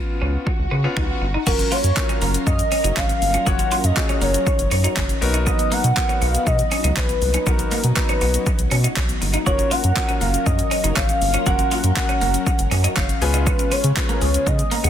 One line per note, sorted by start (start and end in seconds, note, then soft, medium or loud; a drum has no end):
0.00 0.44 B3 medium
0.00 0.44 C#4 medium
0.00 0.44 F4 medium
0.00 0.96 F4 loud
0.00 swell medium
0.22 0.37 C#2 medium
0.22 0.29 C#4 medium
0.47 muted clean electric guitar stroke soft
0.47 kick loud
0.59 0.67 C#2 loud
0.71 0.87 C#3 loud
0.71 0.79 B3 medium
0.84 1.22 B3 medium
0.84 1.22 C#4 medium
0.84 0.91 C#4 medium
0.84 1.22 F4 medium
0.97 1.13 C#2 medium
0.97 1.04 D#4 medium
0.97 finger snap loud
0.97 kick medium
1.21 1.37 G1 medium
1.21 muted clean electric guitar stroke soft
1.34 1.41 D#4 medium
1.46 1.62 F#1 loud
1.46 1.57 F#3 medium
1.46 5.18 F#3 medium
1.46 1.77 C#4 medium
1.46 5.18 C#4 medium
1.46 1.77 F4 medium
1.46 1.54 F#4 medium
1.46 1.77 F#4 medium
1.46 1.73 A#4 loud
1.46 5.18 A#4 medium
1.46 1.77 A#4 medium
1.46 3.45 F5 medium
1.46 kick loud
1.46 crash loud
1.46 shaker medium
1.59 1.70 C#4 medium
1.59 muted clean electric guitar stroke soft
1.59 closed hi-hat medium
1.59 shaker medium
1.72 1.82 A#3 medium
1.72 1.79 F4 medium
1.72 2.22 C#5 loud
1.72 open hi-hat medium
1.72 shaker medium
1.84 1.92 F#2 medium
1.84 closed hi-hat medium
1.84 shaker medium
1.96 2.57 C#4 medium
1.96 2.57 F4 medium
1.96 2.57 F#4 medium
1.96 2.57 A#4 medium
1.96 muted clean electric guitar stroke soft
1.96 kick loud
1.96 clap loud
1.96 shaker medium
2.09 2.16 C#4 medium
2.09 closed hi-hat medium
2.09 shaker medium
2.22 2.37 F#1 loud
2.22 2.29 A#3 medium
2.22 open hi-hat medium
2.22 shaker soft
2.34 2.45 C#4 medium
2.34 closed hi-hat medium
2.34 shaker medium
2.47 2.62 F#2 loud
2.47 2.99 D#5 loud
2.47 muted clean electric guitar stroke soft
2.47 kick loud
2.47 shaker medium
2.59 closed hi-hat medium
2.59 shaker medium
2.72 2.79 C#4 medium
2.72 open hi-hat medium
2.72 shaker medium
2.84 2.92 F#1 medium
2.84 2.91 D#4 medium
2.84 2.95 F#4 medium
2.84 closed hi-hat medium
2.84 shaker medium
2.96 3.13 G#1 loud
2.96 3.04 C#4 medium
2.96 3.48 F5 loud
2.96 kick loud
2.96 clap loud
2.96 shaker medium
3.09 3.20 C#4 medium
3.09 muted clean electric guitar stroke soft
3.09 closed hi-hat medium
3.09 shaker medium
3.22 3.37 G1 loud
3.22 3.32 A#3 medium
3.22 open hi-hat medium
3.22 shaker medium
3.34 3.41 C#4 medium
3.34 3.44 F4 loud
3.34 closed hi-hat medium
3.34 shaker medium
3.46 3.62 F#1 loud
3.46 3.57 F#3 medium
3.46 3.77 C#4 medium
3.46 9.43 D#4 medium
3.46 3.54 F#4 medium
3.46 3.77 F#4 medium
3.46 3.77 C#5 medium
3.46 3.86 F#5 loud
3.46 kick loud
3.46 shaker medium
3.59 3.69 C#4 medium
3.59 muted clean electric guitar stroke soft
3.59 closed hi-hat medium
3.59 shaker medium
3.71 3.82 A#3 medium
3.71 3.79 F4 medium
3.71 open hi-hat medium
3.71 shaker medium
3.84 3.92 F#2 medium
3.84 4.23 D#5 loud
3.84 closed hi-hat medium
3.84 shaker medium
3.97 4.57 C#4 medium
3.97 4.57 F4 medium
3.97 4.57 F#4 medium
3.97 4.57 G#4 medium
3.97 muted clean electric guitar stroke soft
3.97 kick loud
3.97 clap loud
3.97 shaker medium
4.09 4.16 C#4 medium
4.09 closed hi-hat medium
4.09 shaker medium
4.21 4.37 F#1 loud
4.21 4.29 A#3 medium
4.21 5.22 C#5 medium
4.21 open hi-hat medium
4.21 shaker soft
4.34 4.44 C#4 medium
4.34 closed hi-hat medium
4.34 shaker medium
4.47 muted clean electric guitar stroke soft
4.47 kick loud
4.47 shaker medium
4.59 4.67 F#1 loud
4.59 closed hi-hat medium
4.59 shaker medium
4.71 4.87 F#2 medium
4.71 4.79 C#4 medium
4.71 open hi-hat medium
4.71 shaker medium
4.84 4.91 D#4 medium
4.84 4.94 F#4 medium
4.84 closed hi-hat medium
4.84 shaker medium
4.96 5.13 F#1 medium
4.96 5.03 C#4 medium
4.96 kick loud
4.96 clap loud
4.96 shaker medium
5.09 5.20 C#4 medium
5.09 closed hi-hat medium
5.09 shaker medium
5.21 5.53 B1 loud
5.21 9.43 F#3 medium
5.21 5.32 A#3 medium
5.21 5.81 B3 medium
5.21 7.20 B3 medium
5.21 5.82 D#4 medium
5.21 5.82 F#4 medium
5.21 5.82 A#4 loud
5.21 muted clean electric guitar stroke soft
5.21 open hi-hat medium
5.21 shaker medium
5.34 5.41 D#4 medium
5.34 5.44 D#4 loud
5.34 closed hi-hat medium
5.34 shaker medium
5.47 5.57 F#3 medium
5.47 5.54 B3 medium
5.47 5.74 D#5 loud
5.47 kick loud
5.47 shaker medium
5.59 5.69 B3 medium
5.59 muted clean electric guitar stroke soft
5.59 closed hi-hat medium
5.59 shaker medium
5.72 5.79 A#3 medium
5.72 5.82 A#3 medium
5.72 6.23 F#5 loud
5.72 open hi-hat medium
5.72 shaker medium
5.84 5.92 B2 loud
5.84 closed hi-hat medium
5.84 shaker medium
5.96 6.57 B3 medium
5.96 6.57 D#4 medium
5.96 6.57 F#4 medium
5.96 6.57 A#4 medium
5.96 muted clean electric guitar stroke soft
5.96 kick loud
5.96 clap loud
5.96 shaker medium
6.09 6.16 C#4 medium
6.09 closed hi-hat medium
6.09 shaker medium
6.22 6.37 B1 loud
6.22 6.29 B3 medium
6.22 6.48 F5 loud
6.22 open hi-hat medium
6.22 shaker soft
6.34 6.44 B3 medium
6.34 closed hi-hat medium
6.34 shaker medium
6.47 6.62 B2 loud
6.47 6.98 D#5 loud
6.47 muted clean electric guitar stroke soft
6.47 kick loud
6.47 shaker medium
6.59 closed hi-hat medium
6.59 shaker medium
6.71 6.79 C#4 medium
6.71 open hi-hat medium
6.71 shaker medium
6.84 6.92 C#2 medium
6.84 6.91 D#4 medium
6.84 6.95 F#4 medium
6.84 closed hi-hat medium
6.84 shaker medium
6.97 7.12 B1 loud
6.97 7.04 C#4 medium
6.97 7.48 B4 loud
6.97 kick loud
6.97 clap loud
6.97 shaker medium
7.09 7.19 B3 medium
7.09 muted clean electric guitar stroke soft
7.09 closed hi-hat medium
7.09 shaker medium
7.22 7.37 C2 medium
7.22 7.32 A#3 medium
7.22 9.44 C#4 medium
7.22 open hi-hat medium
7.22 shaker medium
7.34 7.41 C#4 medium
7.34 7.44 D#4 medium
7.34 closed hi-hat medium
7.34 shaker medium
7.46 7.62 B1 loud
7.46 7.57 F#3 medium
7.46 7.77 B3 medium
7.46 7.54 B3 medium
7.46 7.77 D#4 medium
7.46 7.77 F#4 medium
7.46 7.98 A#4 loud
7.46 7.77 A#4 medium
7.46 kick loud
7.46 shaker medium
7.59 7.69 B3 medium
7.59 muted clean electric guitar stroke soft
7.59 closed hi-hat medium
7.59 shaker medium
7.71 7.82 A#3 medium
7.71 7.79 A#3 medium
7.71 open hi-hat medium
7.71 shaker medium
7.84 7.92 B2 medium
7.84 closed hi-hat medium
7.84 shaker medium
7.96 8.57 B3 medium
7.96 8.57 D#4 medium
7.96 8.57 F#4 medium
7.96 8.72 B4 medium
7.96 8.57 A#5 medium
7.96 muted clean electric guitar stroke soft
7.96 kick loud
7.96 clap loud
7.96 shaker medium
8.09 8.16 C#4 medium
8.09 closed hi-hat medium
8.09 shaker medium
8.21 8.37 B1 medium
8.21 8.29 B3 medium
8.21 open hi-hat medium
8.21 shaker soft
8.34 8.44 B3 medium
8.34 closed hi-hat medium
8.34 shaker medium
8.46 muted clean electric guitar stroke soft
8.46 kick loud
8.46 shaker medium
8.59 8.67 B1 loud
8.59 closed hi-hat medium
8.59 shaker medium
8.71 8.87 B2 loud
8.71 8.79 C#4 medium
8.71 open hi-hat medium
8.71 shaker medium
8.84 8.91 D#4 medium
8.84 8.94 F#4 medium
8.84 closed hi-hat medium
8.84 shaker medium
8.96 9.12 B1 loud
8.96 9.04 C#4 medium
8.96 kick loud
8.96 clap loud
8.96 shaker medium
9.09 9.19 B3 medium
9.09 closed hi-hat medium
9.09 shaker medium
9.21 9.37 G1 loud
9.21 9.32 A#3 medium
9.21 muted clean electric guitar stroke soft
9.21 open hi-hat medium
9.21 shaker medium
9.34 9.41 D#4 medium
9.34 9.44 D#4 medium
9.34 closed hi-hat medium
9.34 shaker medium
9.46 9.62 F#1 loud
9.46 9.57 F#3 medium
9.46 13.18 F#3 medium
9.46 9.76 C#4 medium
9.46 13.18 C#4 medium
9.46 9.77 F4 medium
9.46 9.53 F#4 medium
9.46 9.77 F#4 medium
9.46 13.18 A#4 medium
9.46 9.77 A#4 medium
9.46 9.73 C#5 loud
9.46 kick loud
9.46 shaker medium
9.59 9.69 C#4 medium
9.59 muted clean electric guitar stroke soft
9.59 closed hi-hat medium
9.59 shaker medium
9.71 9.82 A#3 medium
9.71 9.78 F4 medium
9.71 10.23 F#5 loud
9.71 open hi-hat medium
9.71 shaker medium
9.84 9.92 F#2 loud
9.84 closed hi-hat medium
9.84 shaker medium
9.96 10.57 C#4 medium
9.96 10.57 F4 medium
9.96 10.57 F#4 medium
9.96 10.57 A#4 medium
9.96 muted clean electric guitar stroke soft
9.96 kick loud
9.96 clap loud
9.96 shaker medium
10.09 10.16 C#4 medium
10.09 closed hi-hat medium
10.09 shaker medium
10.21 10.37 F#1 loud
10.21 10.28 A#3 medium
10.21 10.46 F5 loud
10.21 open hi-hat medium
10.21 shaker soft
10.34 10.44 C#4 medium
10.34 closed hi-hat medium
10.34 shaker medium
10.46 10.62 F#2 loud
10.46 10.98 D#5 loud
10.46 muted clean electric guitar stroke soft
10.46 kick loud
10.46 shaker medium
10.59 closed hi-hat medium
10.59 shaker medium
10.71 10.78 C#4 medium
10.71 open hi-hat medium
10.71 shaker medium
10.84 10.92 F#1 medium
10.84 10.91 D#4 medium
10.84 10.94 F#4 medium
10.84 closed hi-hat medium
10.84 shaker medium
10.96 11.12 G#1 medium
10.96 11.04 C#4 medium
10.96 11.48 F5 loud
10.96 kick loud
10.96 clap loud
10.96 shaker medium
11.09 11.19 C#4 medium
11.09 muted clean electric guitar stroke soft
11.09 closed hi-hat medium
11.09 shaker medium
11.21 11.37 G1 loud
11.21 11.32 A#3 medium
11.21 open hi-hat medium
11.21 shaker medium
11.34 11.41 C#4 medium
11.34 11.44 F4 loud
11.34 closed hi-hat medium
11.34 shaker medium
11.46 11.62 F#1 loud
11.46 11.57 F#3 medium
11.46 11.77 C#4 medium
11.46 11.77 F#4 medium
11.46 11.54 F#4 medium
11.46 11.77 A#4 medium
11.46 11.96 F#5 loud
11.46 kick loud
11.46 shaker medium
11.59 11.69 C#4 medium
11.59 muted clean electric guitar stroke soft
11.59 closed hi-hat medium
11.59 shaker medium
11.71 11.82 A#3 medium
11.71 11.79 F4 medium
11.71 open hi-hat medium
11.71 shaker medium
11.84 11.92 F#2 loud
11.84 closed hi-hat medium
11.84 shaker medium
11.96 12.57 C#4 medium
11.96 12.57 F#4 medium
11.96 12.57 A#4 medium
11.96 12.67 F#5 loud
11.96 muted clean electric guitar stroke soft
11.96 kick loud
11.96 clap loud
11.96 shaker medium
12.09 12.16 C#4 medium
12.09 closed hi-hat medium
12.09 shaker medium
12.21 12.37 F#1 medium
12.21 12.29 A#3 medium
12.21 open hi-hat medium
12.21 shaker soft
12.34 12.44 C#4 medium
12.34 closed hi-hat medium
12.34 shaker medium
12.47 muted clean electric guitar stroke soft
12.47 kick loud
12.47 shaker medium
12.59 12.67 F#1 loud
12.59 closed hi-hat medium
12.59 shaker medium
12.71 12.87 F#2 loud
12.71 12.79 C#4 medium
12.71 open hi-hat medium
12.71 shaker medium
12.84 12.91 D#4 medium
12.84 12.94 F#4 medium
12.84 closed hi-hat medium
12.84 shaker medium
12.97 13.13 F#1 loud
12.97 13.04 C#4 medium
12.97 13.20 F5 medium
12.97 kick loud
12.97 clap loud
12.97 shaker medium
13.09 13.19 C#4 medium
13.09 closed hi-hat medium
13.09 shaker medium
13.21 13.53 C#2 loud
13.21 14.90 C#3 medium
13.21 14.90 G#3 medium
13.21 13.32 B3 medium
13.21 14.90 B3 medium
13.21 13.81 C#4 loud
13.21 13.82 F4 medium
13.21 13.82 G#4 medium
13.21 13.82 B4 loud
13.21 13.45 G#5 medium
13.21 muted clean electric guitar stroke soft
13.21 open hi-hat medium
13.21 shaker medium
13.34 13.41 D#4 medium
13.34 13.44 F4 loud
13.34 closed hi-hat medium
13.34 shaker medium
13.46 13.57 G#3 medium
13.46 13.54 C#4 medium
13.46 13.73 B4 loud
13.46 kick loud
13.46 shaker medium
13.59 13.69 C#4 medium
13.59 muted clean electric guitar stroke soft
13.59 closed hi-hat medium
13.59 shaker medium
13.71 13.82 B3 medium
13.71 13.79 B3 medium
13.71 14.49 C#5 loud
13.71 open hi-hat medium
13.71 shaker medium
13.84 13.92 C#3 loud
13.84 closed hi-hat medium
13.84 shaker medium
13.97 14.57 C#4 medium
13.97 14.57 F4 medium
13.97 14.57 G#4 medium
13.97 14.57 B4 medium
13.97 muted clean electric guitar stroke soft
13.97 kick loud
13.97 clap loud
13.97 shaker medium
14.09 14.16 A#3 medium
14.09 closed hi-hat medium
14.09 shaker medium
14.21 14.38 C#2 loud
14.21 14.29 G#3 medium
14.21 open hi-hat medium
14.21 shaker soft
14.34 14.44 C#4 medium
14.34 closed hi-hat medium
14.34 shaker medium
14.47 14.62 C#3 loud
14.47 14.90 D#5 loud
14.47 muted clean electric guitar stroke soft
14.47 kick loud
14.47 shaker medium
14.59 closed hi-hat medium
14.59 shaker medium
14.71 14.79 A#3 medium
14.71 open hi-hat medium
14.71 shaker medium
14.84 14.90 D#2 medium
14.84 14.90 B3 medium
14.84 14.90 G#4 medium
14.84 closed hi-hat medium
14.84 shaker medium